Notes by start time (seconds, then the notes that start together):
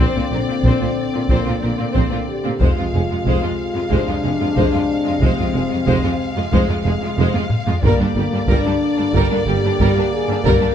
Already playing: D3 C4 D5
0.00 C4 C5
0.15 A#2 C4 F4
0.30 A#1 A#2 C4 A#4
0.48 A#2 C4 F4
0.63 A#1 A#2 C4 C5, taiko
0.81 A#2 C4 F4
1.14 A#2 C4 F4
1.28 A#1 A#2 A#3 C4 C5, taiko
1.45 A#2 C4 F4
1.61 A#1 A#2 C4 A#4
1.77 A#2 C4 F4
1.92 A#1 C4 C5, taiko
1.96 A#2
2.11 A#2 C4 F4
2.29 G4
2.44 A#2 C4 F4
2.60 F1 F2 C3 G#3 F4 C5 F5, taiko
2.76 F2 G#3 F4
2.93 F1 F2 G#3 G#4
3.09 F2 G#3 F4
3.25 F1 F2 G#3 C5, taiko
3.42 F2 G#3 F4
3.74 F2 G#3 F4
3.90 F1 F2 G#3 D4 C5, taiko
4.06 F2 G#3 F4
4.23 F1 F2 G#3 G#4
4.40 F2 G#3 F4
4.56 F1 F2 G#3 C5, taiko
4.71 F2 G#3 F4
5.05 F2 G#3 F4
5.21 F1 F2 G#3 C4 C5, taiko
5.38 F2 G#3 F4
5.53 F1 F2 G#3 G#4
5.69 F2 G#3 F4
5.86 F1 F2 G#3 C5, taiko
6.03 F2 G#3 F4
6.36 F2 G#3 F4
6.52 F1 F2 G#3 C5, taiko
6.68 F2 G#3 F4
6.83 F1 F2 G#3 G#4
7.01 F2 G#3
7.06 F4
7.17 F1 F2 G#3 C5, taiko mid
7.34 F2 G#3 F4, taiko high
7.50 taiko low-mid
7.67 F2 G#3 F4, taiko low
7.83 G1 G2 D3 G3 A#3 A#4 D5, taiko
8.00 G2 G3 D4
8.15 G1 G2 G3 G4
8.32 G2 G3 D4
8.48 G1 G2 G3 D4 A#4, taiko
8.65 G2 G3 D4
8.98 G2 G3 D4
9.13 G1 G2 G3 A#4, taiko
9.30 G2 G3 D4
9.46 G1 G2 G3 G4
9.63 G2 G3 D4
9.79 G1 G2 G3 A#4, taiko
9.95 G2 G3
9.99 D4
10.13 G#4
10.27 G2 G3 D4
10.44 G1 G2 G3 A#4, taiko
10.60 G2 G3 D4